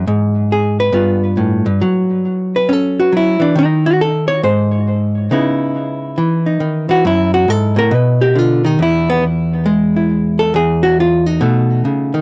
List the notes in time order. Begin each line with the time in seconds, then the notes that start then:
Already playing: B3
0.07 G#2
0.52 G#4
0.80 B4
0.92 G2 B3 F4
1.37 A2
1.66 G2
1.81 F#3
2.56 B4
2.69 C#4 A4
3.00 F#4
3.12 F#3
3.17 E4
3.40 E3 D4
3.56 D#3 D#4
3.86 F#4
4.01 A4
4.28 C#5
4.43 G#2 C5
5.31 C#3 B3 D#4 E4
6.18 E3
6.46 D#4
6.60 D#3
6.89 E3 F#4
7.05 F#2 E4
7.34 F#4
7.48 G#2 A4
7.76 A2 A#4
7.91 B2
7.95 B4
8.21 G4
8.35 D3 F4
8.65 D#3 D#4
8.79 E2 E4
9.10 B3
9.66 G#3
9.96 E4
10.39 A4
10.54 E2 G#4
10.83 F#4
11.00 F4
11.26 D#4
11.41 B2 A3
11.85 C#3
12.14 D#3